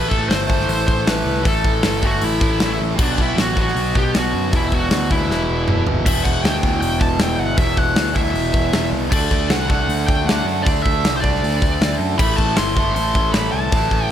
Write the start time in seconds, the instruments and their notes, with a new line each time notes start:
Already playing: picked electric bass A1, distorted electric guitar A2 E3 A3
0.09 picked electric bass A1, lead electric guitar A4, kick
0.29 picked electric bass G1, lead electric guitar C5, snare, open hi-hat
0.47 distorted electric guitar A2 E3 A3, kick
0.60 snare
0.68 picked electric bass A1, lead electric guitar C5, open hi-hat
0.87 picked electric bass A1, lead electric guitar C5, kick
1.06 picked electric bass A1, lead electric guitar B4, snare, open hi-hat
1.25 picked electric bass C2
1.42 picked electric bass A1, distorted electric guitar A2 E3 A3, kick, open hi-hat
1.48 lead electric guitar A4
1.64 picked electric bass A1, kick
1.83 picked electric bass G1, snare, open hi-hat
2.01 distorted electric guitar A2 E3 A3, kick
2.05 lead electric guitar F#4
2.21 picked electric bass A1, lead electric guitar E4, open hi-hat
2.41 picked electric bass A1, kick
2.60 picked electric bass A1, snare, open hi-hat
2.80 picked electric bass A1
2.96 picked electric bass B1, distorted electric guitar B2 F#3 B3, kick, crash
3.02 lead electric guitar D4
3.18 picked electric bass B1, lead electric guitar E4, kick
3.36 picked electric bass A1, lead electric guitar F#4, snare, open hi-hat
3.55 distorted electric guitar B2 F#3 B3, kick
3.61 lead electric guitar F#4
3.68 snare
3.75 picked electric bass B1, open hi-hat
3.95 picked electric bass B1, lead electric guitar G4, kick
4.14 picked electric bass B1, lead electric guitar F#4, snare, open hi-hat
4.33 picked electric bass F#2
4.52 picked electric bass E1, distorted electric guitar E2 B2 E3, lead electric guitar E4, kick, open hi-hat
4.72 picked electric bass E1, lead electric guitar F#4, kick
4.91 picked electric bass D2, snare, open hi-hat
5.10 distorted electric guitar E2 B2 E3, lead electric guitar E4, kick
5.29 picked electric bass E1, snare
5.49 picked electric bass E1
5.68 picked electric bass E1, mid tom
5.86 picked electric bass G1, floor tom
6.05 picked electric bass E1, distorted electric guitar E2 B2 E3, lead electric guitar E5, kick, crash
6.24 picked electric bass E1, lead electric guitar F#5, kick
6.43 picked electric bass D2, lead electric guitar G5, snare, open hi-hat
6.61 distorted electric guitar E2 B2 E3, kick
6.81 picked electric bass E1, lead electric guitar G5, open hi-hat
7.00 picked electric bass E1, lead electric guitar A5, kick
7.19 picked electric bass E1, lead electric guitar G5, snare, open hi-hat
7.38 picked electric bass G1, lead electric guitar F#5
7.56 picked electric bass E1, distorted electric guitar E2 B2 E3, lead electric guitar E5, kick, open hi-hat
7.77 picked electric bass E1, lead electric guitar F#5, kick
7.95 picked electric bass D2, snare, open hi-hat
8.13 distorted electric guitar E2 B2 E3, lead electric guitar E5, kick
8.26 snare
8.34 picked electric bass E1, open hi-hat
8.53 picked electric bass E1, kick
8.73 picked electric bass E1, snare, open hi-hat
8.91 picked electric bass C2
9.09 picked electric bass D2, distorted electric guitar D3 A3 D4, lead electric guitar D5, kick, crash
9.31 picked electric bass D2, kick
9.50 picked electric bass C2, lead electric guitar F#5, snare, open hi-hat
9.68 distorted electric guitar D3 A3 D4, lead electric guitar F#5, kick
9.88 picked electric bass D2, open hi-hat
10.07 picked electric bass D2, lead electric guitar G5, kick
10.25 picked electric bass D2, lead electric guitar F#5
10.29 snare, open hi-hat
10.44 picked electric bass F#2
10.63 picked electric bass D2, distorted electric guitar D3 A3, lead electric guitar D5, kick
10.67 distorted electric guitar D4, open hi-hat
10.82 picked electric bass D2, lead electric guitar E5, kick
11.04 picked electric bass C2, snare, open hi-hat
11.17 distorted electric guitar D4, lead electric guitar C5
11.21 distorted electric guitar D3 A3, lead electric guitar D5, kick
11.35 snare
11.43 picked electric bass D2, open hi-hat
11.62 picked electric bass D2, kick
11.81 picked electric bass D2, snare, open hi-hat
11.99 picked electric bass F#2
12.16 picked electric bass A1, distorted electric guitar A2 E3 A3, lead electric guitar B5, kick, crash
12.37 picked electric bass A1, lead electric guitar A5, kick
12.56 picked electric bass G1, lead electric guitar C6, snare, open hi-hat
12.76 distorted electric guitar A2 E3 A3, kick
12.95 picked electric bass A1, lead electric guitar C6, open hi-hat
13.15 picked electric bass A1, kick
13.33 picked electric bass A1, lead electric guitar B5, snare, open hi-hat
13.52 picked electric bass C2, lead electric guitar A5
13.71 picked electric bass A1, distorted electric guitar A2 E3 A3, kick, open hi-hat
13.91 picked electric bass A1, kick
14.05 lead electric guitar G5